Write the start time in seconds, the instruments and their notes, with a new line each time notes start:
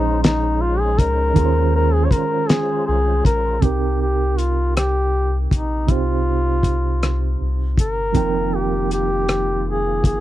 Already playing: analog synth bass A#1, reed electric piano A#2 F3 C#4 D#4 G#4 C5, tonewheel organ G#3 C#4 D#4 C5, duduk D#4
0.23 duduk D#4, snare, closed hi-hat
0.61 duduk F4
0.79 duduk G#4
0.99 analog synth bass C#2, duduk A#4, kick, closed hi-hat
1.34 analog synth bass D#2, reed electric piano D#3 C#4 F4 G#4, tonewheel organ G#3 F4 C5, kick, closed hi-hat
1.39 reed electric piano A#4
1.46 reed electric piano C5
1.75 duduk A#4
1.93 duduk G#4
2.05 duduk C#5
2.11 analog synth bass C2, duduk A#4, kick, closed hi-hat
2.48 duduk G#4, snare, closed hi-hat
2.87 analog synth bass C2, duduk G#4
3.25 analog synth bass A#1, duduk A#4, kick, closed hi-hat
3.60 analog synth bass C2, reed electric piano C3 C4 D#4, kick, closed hi-hat
3.64 duduk G4, reed electric piano G4 A#4
4.01 duduk G4
4.38 duduk F4, closed hi-hat
4.76 duduk G4, cross-stick, closed hi-hat
5.51 analog synth bass A#1, duduk D#4, kick, closed hi-hat
5.86 analog synth bass C2, reed electric piano C3 C4 D#4 G4, kick, closed hi-hat
5.91 duduk F4, reed electric piano C5
6.63 kick, closed hi-hat
7.03 cross-stick, closed hi-hat
7.42 analog synth bass C2
7.78 analog synth bass G1, duduk A#4, kick, closed hi-hat
8.13 analog synth bass F1, tonewheel organ D#3 A#3 F4, reed electric piano F3 C4 D#4 G5, kick, closed hi-hat
8.18 reed electric piano A#4
8.55 duduk G4
8.91 duduk G4, closed hi-hat
9.29 cross-stick, closed hi-hat
9.68 duduk G#4
10.04 analog synth bass G1, duduk G#4, kick, closed hi-hat